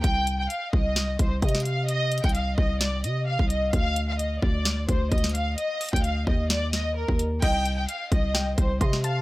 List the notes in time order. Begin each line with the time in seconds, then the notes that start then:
0.04 C2 G5, kick, closed hi-hat
0.27 closed hi-hat
0.39 G5
0.50 F5, closed hi-hat
0.73 C2 D#5, kick
0.96 snare, closed hi-hat
1.19 C2 C5, kick, closed hi-hat
1.42 C3 D#5, kick, closed hi-hat
1.49 closed hi-hat
1.55 snare, closed hi-hat
1.60 closed hi-hat
1.65 F5, closed hi-hat
1.88 D#5, closed hi-hat
2.12 closed hi-hat
2.18 closed hi-hat
2.24 C2 G5, kick, closed hi-hat
2.29 closed hi-hat
2.35 F5, closed hi-hat
2.58 C2 D#5, kick
2.81 D5, snare, closed hi-hat
3.04 C3 D#5, closed hi-hat
3.27 F5
3.39 C2, kick
3.50 D#5, closed hi-hat
3.73 D2 F5, kick, closed hi-hat
3.96 closed hi-hat
4.09 F5
4.19 D#5, closed hi-hat
4.42 D2 D5, kick
4.65 snare, closed hi-hat
4.89 D2 C5, kick, closed hi-hat
5.12 D2 D#5, kick, closed hi-hat
5.18 closed hi-hat
5.24 snare, closed hi-hat
5.29 closed hi-hat
5.35 F5, closed hi-hat
5.58 D#5, closed hi-hat
5.81 closed hi-hat, open hi-hat
5.89 closed hi-hat
5.93 D2 G5, kick, closed hi-hat
6.04 F5, closed hi-hat
6.27 D#2 D#5, kick
6.50 D5, snare, closed hi-hat
6.73 D#5, snare, closed hi-hat
6.96 A#4
7.09 D#2, kick
7.19 closed hi-hat
7.42 C2 D#5 G5, kick, closed hi-hat, crash
7.66 closed hi-hat
7.78 G5
7.89 F5, closed hi-hat
8.12 C2 D#5, kick, closed hi-hat
8.34 G5, snare, closed hi-hat
8.58 C2 C5, kick, closed hi-hat
8.81 C3 D#5 C6, kick, closed hi-hat
8.93 snare
9.04 F5 A5, closed hi-hat